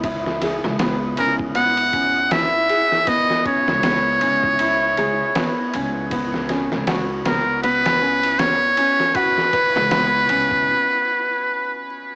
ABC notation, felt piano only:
X:1
M:4/4
L:1/8
Q:"Swing 16ths" 1/4=79
K:C#m
V:1 name="Felt piano"
E G B, C B, C E G | B, C B, C E G B, C | B, C F B, B, C B, C | F B B, C z4 |]